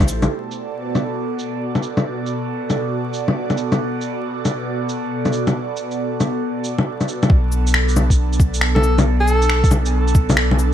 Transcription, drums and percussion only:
0.00 kick, low bongo, shaker
0.08 cabasa, shaker
0.22 low bongo, shaker
0.51 shaker
0.95 low bongo, shaker
1.39 shaker
1.75 low bongo, shaker
1.83 shaker
1.97 low bongo, shaker
2.26 shaker
2.70 low bongo, shaker
3.14 shaker
3.28 low bongo
3.50 low bongo, shaker
3.57 shaker
3.72 low bongo, shaker
4.01 shaker
4.45 low bongo, shaker
4.89 shaker
5.25 low bongo, shaker
5.33 shaker
5.47 low bongo, shaker
5.77 shaker
5.91 shaker
6.20 low bongo, shaker
6.64 shaker
6.78 low bongo
7.01 low bongo, shaker
7.08 shaker
7.23 low bongo, shaker
7.30 kick
7.52 cabasa
7.67 shaker
7.74 finger snap
7.89 shaker
7.96 low bongo, cabasa
8.10 kick, shaker
8.33 shaker
8.40 kick, cabasa
8.54 shaker
8.61 finger snap
8.76 low bongo
8.84 cabasa
8.98 low bongo, shaker
9.28 cabasa
9.42 shaker
9.49 finger snap
9.64 kick, shaker
9.71 low bongo, cabasa
9.86 shaker
10.08 shaker
10.15 kick, cabasa
10.30 low bongo, shaker
10.37 finger snap
10.51 low bongo
10.59 cabasa

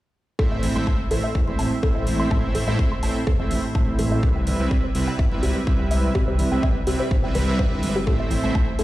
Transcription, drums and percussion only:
0.39 kick
0.63 open hi-hat, low conga
0.76 high conga
0.87 kick
1.11 open hi-hat
1.35 kick
1.47 high conga
1.59 open hi-hat
1.83 kick
2.07 open hi-hat, high conga
2.31 kick
2.55 open hi-hat, low conga
2.68 high conga
2.79 kick
3.03 open hi-hat
3.27 kick
3.39 high conga
3.51 open hi-hat, low conga
3.75 kick
3.98 open hi-hat, high conga, low conga
4.23 kick
4.47 open hi-hat, low conga
4.60 high conga
4.71 kick
4.95 open hi-hat
5.19 kick
5.32 high conga
5.43 open hi-hat
5.67 kick
5.91 open hi-hat, high conga
6.15 kick
6.39 open hi-hat, low conga
6.52 high conga
6.63 kick
6.87 open hi-hat
7.11 kick
7.24 high conga
7.35 open hi-hat, low conga
7.59 kick
7.82 open hi-hat, high conga, low conga
8.07 kick
8.30 open hi-hat, low conga
8.44 high conga
8.55 kick
8.79 open hi-hat

